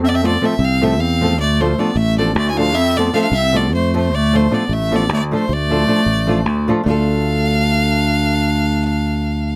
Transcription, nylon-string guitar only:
\new Staff \with { instrumentName = "Nylon-string guitar" } { \time 7/8 \key d \minor \tempo 4 = 153 r8 <f a c' f' a'>8 <f a c' f' a'>8 r8 <f a c' f' a'>8 r8 <f a c' f' a'>8 | r8 <f a d' f' a'>8 <f a d' f' a'>8 r8 <f a d' f' a'>8 r8 <f a d' f' a'>8 | r8 <f a c' f' a'>8 <f a c' f' a'>8 r8 <f a c' f' a'>8 r8 <f a c' f' a'>8 | r8 <f a d' f' a'>8 <f a d' f' a'>8 r8 <f a d' f' a'>8 r8 <f a d' f' a'>8 |
r8 <f a d' f' a'>8 <f a d' f' a'>8 r8 <f a d' f' a'>8 r8 <f a d' f' a'>8 | <a d' f' a'>2.~ <a d' f' a'>8~ | <a d' f' a'>2.~ <a d' f' a'>8 | }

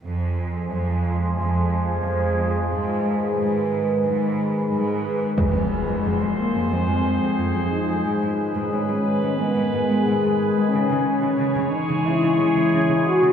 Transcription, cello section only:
\new Staff \with { instrumentName = "Cello section" } { \clef bass \time 4/4 \key aes \mixolydian \tempo 4 = 90 f,4 f,4 f,4 f,4 | aes,4 aes,4 aes,4 aes,4 | f,16 f,16 r16 f,16 f,16 f,16 r16 f,16 f,16 f,16 f,16 f,16 f,16 f,16 r16 f,16 | aes,16 aes,16 r16 aes,16 aes,16 aes,16 r16 aes,16 aes,16 aes,16 aes,16 aes,16 aes,16 aes,16 r16 aes,16 |
des16 des16 r16 des16 des16 des16 r16 des16 des16 des16 des16 des16 des16 des16 r16 des16 | }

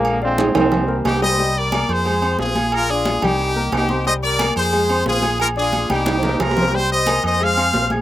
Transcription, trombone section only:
\new Staff \with { instrumentName = "Trombone section" } { \clef bass \time 4/4 \key c \minor \tempo 4 = 179 << { bes8 c'4 c'4. r4 | r1 | r1 | r1 |
r1 | r1 | } \\ { <d f>8 <f aes>4 <ees g>2 r8 | r1 | r1 | r1 |
r1 | r1 | } >> }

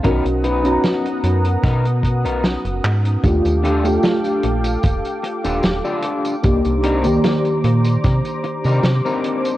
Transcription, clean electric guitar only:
\new Staff \with { instrumentName = "Clean electric guitar" } { \time 4/4 \key ees \lydian \tempo 4 = 75 <b dis' ais'>16 r16 <b dis' b'>8. r8. <b dis' ais'>16 r8 <b dis' ais'>16 r4 | r8 <d' f' g' a'>16 r2 <d' f' g' a'>16 r16 <d' f' g' a'>8. | r8 <c' d' ees' bes'>16 r2 <c' d' ees' bes'>16 r16 <c' d' ees' bes'>8. | }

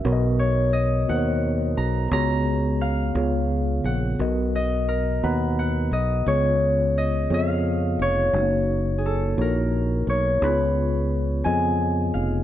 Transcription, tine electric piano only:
<<
  \new Staff \with { instrumentName = "Tine electric piano" } { \time 6/8 \key cis \mixolydian \tempo 4. = 58 <b fis' ais' cis'' dis''>4 r8 <b fis' ais' bis' cis''>4 r8 | <b fis' gis' cis''>4 r8 <b eis' gis' cis''>4 r8 | <b fis' ais' dis''>4 r8 <b fis' fis'' ais''>4 r8 | <b eis' gis' cis''>4 r8 <b eis' gis' cis''>4 r8 |
<gis ais dis' fis' cis''>4 r8 <ais dis' fis' cis''>4 r8 | <b dis' eis' gis' cis''>4 r8 <b eis' gis' dis''>4 r8 | }
  \new Staff \with { instrumentName = "Tine electric piano" } { \clef bass \time 6/8 \key cis \mixolydian b,4. r4. | cis4. cis4. | b,4. r4. | cis4. r4. |
r2. | cis4. r4. | }
>>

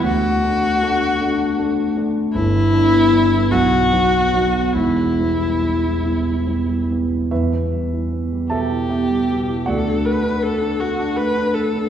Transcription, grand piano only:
<<
  \new Staff \with { instrumentName = "Grand piano" } { \time 6/8 \key e \minor \tempo 4. = 51 r2. | r2. | r2. | <e' b' e''>4. <a' e'' a''>8 <g' e'' g''>4 |
<fis' d'' fis''>2~ <fis' d'' fis''>8 r8 | }
  \new Staff \with { instrumentName = "Grand piano" } { \time 6/8 \key e \minor d,8 <a d'>8 <a d'>8 <a d'>8 <a d'>8 <a d'>8 | g,,8 <g b d'>8 <g b d'>8 b,,8 <fis b dis'>8 <fis b dis'>8 | <e,, e,>8 <g b e'>8 <g b e'>8 <g b e'>8 <g b e'>8 <g b e'>8 | e,16 b16 g16 e'16 b16 g16 b,16 e'16 b16 g16 b,16 e'16 |
d,16 d'16 a16 d'16 a16 d'16 a16 d'16 a16 d'16 a16 d'16 | }
>>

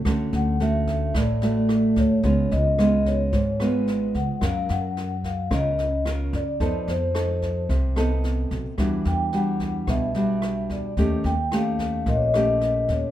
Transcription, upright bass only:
\new Staff \with { instrumentName = "Upright bass" } { \clef bass \time 4/4 \key e \dorian \tempo 4 = 110 d,8 d,4. a,,4. d,16 r16 | cis,8 cis,4. gis,,4. cis,16 r16 | fis,8 fis,4. cis,4. fis,16 r16 | f,8 f,4. c,4. b,,16 r16 |
e,8 e,4. b,,4. e,16 r16 | ees,8 ees,4. bes,,4. ees,16 r16 | }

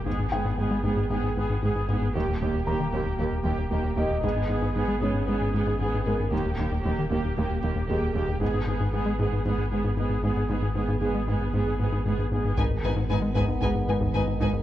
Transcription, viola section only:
\new Staff \with { instrumentName = "Viola section" } { \time 4/4 \key gis \minor \tempo 4 = 115 <b gis'>8 <b gis'>8 <b gis'>8 <b gis'>8 <b gis'>8 <b gis'>8 <b gis'>8 <b gis'>8 | <ais g'>8 <ais g'>8 <ais g'>8 <ais g'>8 <ais g'>8 <ais g'>8 <ais g'>8 <ais g'>8 | <b gis'>8 <b gis'>8 <b gis'>8 <b gis'>8 <b gis'>8 <b gis'>8 <b gis'>8 <b gis'>8 | <ais g'>8 <ais g'>8 <ais g'>8 <ais g'>8 <ais g'>8 <ais g'>8 <ais g'>8 <ais g'>8 |
<b gis'>8 <b gis'>8 <b gis'>8 <b gis'>8 <b gis'>8 <b gis'>8 <b gis'>8 <b gis'>8 | <b gis'>8 <b gis'>8 <b gis'>8 <b gis'>8 <b gis'>8 <b gis'>8 <b gis'>8 <b gis'>8 | dis'8 dis'8 dis'8 dis'8 dis'8 dis'8 dis'8 dis'8 | }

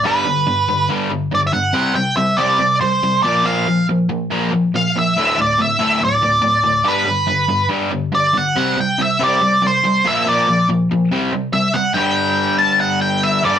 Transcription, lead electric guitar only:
\new Staff \with { instrumentName = "Lead electric guitar" } { \time 4/4 \key g \major \tempo 4 = 141 b'2 r4 \tuplet 3/2 { d''8 e''16 fis''8.~ } | fis''8 g''8 e''8 d''4 c''4 d''8 | f''4 r2 f''8 e''8~ | e''8 d''8 e''4 d''2 |
b'2 r4 d''8 fis''8~ | fis''8 g''8 e''8 d''4 c''4 e''8 | d''4 r2 e''8 fis''8 | g''4. a''8 fis''8 g''8 e''8 d''8 | }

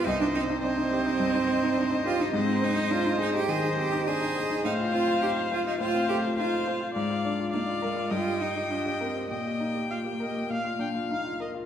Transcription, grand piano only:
\new Staff \with { instrumentName = "Grand piano" } { \time 4/4 \key c \minor \tempo 4 = 104 c,16 ees'16 c'16 ees'16 d'16 ees'16 g'16 ees'16 g,16 ees'16 c'16 ees'16 d'16 ees'16 g'16 ees'16 | \key ees \major aes,16 ees'16 c'16 ees'16 d'16 ees'16 aes'16 ees'16 ees16 ees'16 c'16 ees'16 d'16 ees'16 aes'16 ees'16 | a,16 f'16 c'16 f'16 ees'16 f'16 c''16 f'16 a,16 c'16 a16 f'16 ees'16 f'16 c''16 f'16 | aes,16 f'16 d'16 f'16 ees'16 f'16 bes'16 f'16 g,16 g'16 ees'16 g'16 f'16 g'16 bes'16 g'16 |
bes,16 g'16 ees'16 g'16 f'16 g'16 bes'16 g'16 bes,16 f'16 d'16 f'16 ees'16 f'16 bes'16 f'16 | }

